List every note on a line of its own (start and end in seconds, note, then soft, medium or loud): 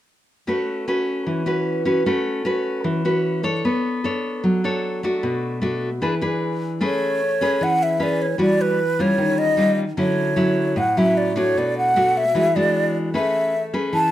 0.47 1.25 A3 medium
0.47 0.84 C#4 soft
0.47 0.84 F#4 soft
0.47 0.84 B4 soft
0.88 1.44 C#4 soft
0.88 1.44 F#4 soft
0.88 1.44 B4 medium
1.27 2.04 E3 medium
1.46 1.83 C#4 medium
1.46 1.83 F#4 soft
1.46 1.83 B4 medium
1.85 2.02 C#4 medium
1.85 2.03 F#4 medium
1.85 2.03 B4 medium
2.06 2.83 A3 medium
2.06 2.42 C#4 soft
2.06 2.43 F#4 soft
2.06 2.43 B4 medium
2.45 3.01 C#4 medium
2.45 3.02 F#4 soft
2.45 3.02 B4 medium
2.84 3.62 E3 medium
3.05 3.41 C#4 soft
3.05 3.41 F#4 soft
3.05 3.42 B4 medium
3.43 4.00 D4 soft
3.43 4.00 A4 medium
3.43 4.00 C#5 medium
3.65 4.42 B3 medium
4.04 4.60 D4 soft
4.04 4.60 A4 soft
4.04 4.61 C#5 medium
4.44 5.21 F#3 medium
4.64 5.00 D4 medium
4.64 5.00 A4 medium
4.64 5.00 C#5 medium
5.03 5.59 A3 soft
5.03 5.60 D4 medium
5.03 5.60 F#4 medium
5.23 6.00 B2 medium
5.62 5.88 A3 soft
5.62 5.89 D4 soft
5.62 5.89 F#4 medium
6.02 6.79 E3 medium
6.02 6.13 D4 medium
6.02 6.14 G#4 soft
6.02 6.14 B4 medium
6.21 6.78 D4 medium
6.21 6.78 G#4 soft
6.21 6.78 B4 medium
6.81 7.58 A3 medium
6.81 7.20 C#4 soft
6.81 7.20 G#4 medium
6.81 7.21 B4 soft
6.81 7.65 C#5 medium
7.41 7.97 C#4 soft
7.41 7.97 G#4 medium
7.41 7.98 B4 medium
7.61 8.37 E3 medium
7.61 7.84 F#5 medium
7.83 8.04 E5 medium
8.00 8.25 C#4 soft
8.00 8.25 G#4 soft
8.00 8.25 B4 soft
8.00 8.23 D5 medium
8.22 8.40 C#5 medium
8.38 9.16 E3 medium
8.38 8.78 G3 soft
8.38 8.79 D4 soft
8.38 8.79 F#4 medium
8.38 8.63 D5 medium
8.61 9.03 B4 medium
8.99 9.55 G3 soft
8.99 9.55 C#4 soft
8.99 9.56 F4 medium
8.99 9.40 C#5 medium
9.18 9.95 D#3 medium
9.38 9.78 D#5 medium
9.57 9.83 G3 medium
9.57 9.83 C#4 soft
9.57 9.84 F4 medium
9.97 10.75 D3 medium
9.97 10.34 F#3 soft
9.97 10.34 C#4 medium
9.97 10.35 E4 medium
9.97 10.79 C#5 medium
10.36 10.76 F#3 soft
10.36 10.76 C#4 soft
10.36 10.77 E4 medium
10.76 11.54 A2 medium
10.76 10.99 F#5 medium
10.97 11.33 F#3 medium
10.97 11.34 C#4 soft
10.97 11.34 E4 medium
10.97 11.19 E5 medium
11.17 11.39 D5 medium
11.36 11.92 A3 medium
11.36 11.93 D4 medium
11.36 11.93 F#4 medium
11.36 11.60 C#5 medium
11.57 12.34 B2 medium
11.57 11.77 D5 medium
11.78 12.19 F#5 medium
11.96 12.23 A3 medium
11.96 12.23 D4 soft
11.96 12.23 F#4 medium
12.17 12.58 E5 medium
12.35 13.12 E3 medium
12.35 12.47 G#3 soft
12.35 12.47 D4 soft
12.35 12.47 F#4 medium
12.56 13.12 G#3 medium
12.56 13.12 D4 soft
12.56 13.12 F#4 medium
12.56 12.95 D5 medium
13.14 13.91 A3 medium
13.14 13.54 C#4 soft
13.14 13.54 G#4 soft
13.14 13.54 B4 soft
13.14 13.63 E5 medium
13.74 14.10 C#4 soft
13.74 14.10 G#4 medium
13.74 14.10 B4 medium
13.93 14.11 E3 medium
13.93 14.11 A5 medium